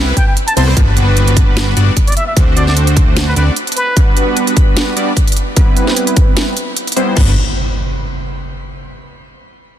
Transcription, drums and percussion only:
0.17 kick, closed hi-hat
0.37 closed hi-hat
0.48 closed hi-hat
0.57 closed hi-hat
0.68 cross-stick
0.77 kick, closed hi-hat
0.97 closed hi-hat
1.17 closed hi-hat
1.28 closed hi-hat
1.37 kick, closed hi-hat
1.57 snare, closed hi-hat
1.77 closed hi-hat
1.97 kick, closed hi-hat
2.08 closed hi-hat
2.12 closed hi-hat
2.17 closed hi-hat
2.37 kick, closed hi-hat
2.57 closed hi-hat
2.67 snare
2.77 closed hi-hat
2.87 closed hi-hat
2.97 kick, closed hi-hat
3.17 snare, closed hi-hat
3.36 closed hi-hat
3.56 closed hi-hat
3.67 closed hi-hat
3.72 closed hi-hat
3.77 closed hi-hat
3.97 kick, closed hi-hat
4.17 closed hi-hat
4.37 closed hi-hat
4.47 closed hi-hat
4.57 kick, closed hi-hat
4.77 snare, closed hi-hat
4.97 closed hi-hat
5.17 kick, closed hi-hat
5.28 closed hi-hat
5.32 closed hi-hat
5.37 closed hi-hat
5.57 kick, closed hi-hat
5.77 closed hi-hat
5.87 snare
5.96 closed hi-hat
6.07 closed hi-hat
6.17 kick, closed hi-hat
6.37 snare, closed hi-hat
6.57 closed hi-hat
6.77 closed hi-hat
6.87 closed hi-hat
6.92 closed hi-hat
6.97 closed hi-hat
7.17 kick, crash

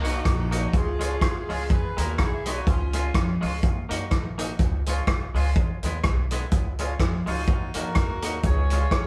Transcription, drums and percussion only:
0.04 closed hi-hat
0.25 kick, cross-stick, closed hi-hat
0.52 closed hi-hat
0.73 kick, closed hi-hat
1.01 closed hi-hat
1.21 kick, cross-stick, closed hi-hat
1.50 open hi-hat
1.70 kick, closed hi-hat
1.98 closed hi-hat
2.18 kick, cross-stick, closed hi-hat
2.46 closed hi-hat
2.67 kick, closed hi-hat
2.93 closed hi-hat
3.14 kick, cross-stick, closed hi-hat
3.42 open hi-hat
3.63 kick, closed hi-hat
3.91 closed hi-hat
4.11 kick, cross-stick, closed hi-hat
4.39 closed hi-hat
4.59 kick, closed hi-hat
4.86 closed hi-hat
5.07 kick, cross-stick, closed hi-hat
5.35 open hi-hat
5.56 kick, closed hi-hat
5.83 closed hi-hat
6.04 kick, cross-stick, closed hi-hat
6.31 closed hi-hat
6.51 kick, closed hi-hat
6.79 closed hi-hat
6.99 kick, cross-stick, closed hi-hat
7.27 open hi-hat
7.48 kick, closed hi-hat
7.74 closed hi-hat
7.95 kick, cross-stick, closed hi-hat
8.22 closed hi-hat
8.43 kick, closed hi-hat
8.70 closed hi-hat
8.91 kick, cross-stick, closed hi-hat

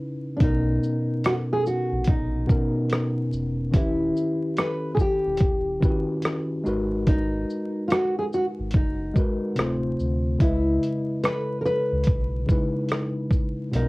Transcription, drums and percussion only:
0.40 kick, closed hi-hat
0.83 shaker
1.24 cross-stick, closed hi-hat
1.66 shaker
2.04 kick, closed hi-hat
2.49 kick, shaker
2.89 cross-stick, closed hi-hat
3.33 shaker
3.74 kick, closed hi-hat
4.17 shaker
4.57 cross-stick, closed hi-hat
4.97 kick, shaker
5.37 kick, closed hi-hat
5.83 kick, shaker
6.22 cross-stick, closed hi-hat
6.66 shaker
7.07 kick, closed hi-hat
7.50 shaker
7.90 cross-stick, closed hi-hat
8.33 shaker
8.71 kick, closed hi-hat
9.16 kick, shaker
9.56 cross-stick, closed hi-hat
9.99 shaker
10.40 kick, closed hi-hat
10.83 closed hi-hat, shaker
11.24 cross-stick, closed hi-hat
11.66 shaker
12.04 kick, closed hi-hat
12.49 kick, shaker
12.89 cross-stick, closed hi-hat
13.30 kick, shaker
13.73 closed hi-hat

